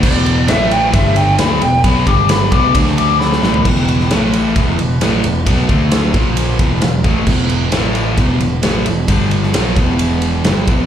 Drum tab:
CC |x---------------|----------------|x---------------|----------------|
RD |--x-x-x-x-x-x-x-|x-x-x-x-x-x-----|--x-x-x-x-x-x-x-|x-x-x-x-x-x-x-x-|
SD |----o-------o---|----o----o--ooo-|---oo-------o---|----o-------o---|
FT |----------------|---------------o|----------------|----------------|
BD |o-------o-------|o-o---o-o-------|o-------o-------|o-o---o---o---o-|

CC |x---------------|----------------|
RD |--x-x-x-x-x-x-x-|x-x-x-x-x-x-x-x-|
SD |----o-------o---|---oo-------oo--|
FT |----------------|----------------|
BD |o-------o-------|o-----o-------o-|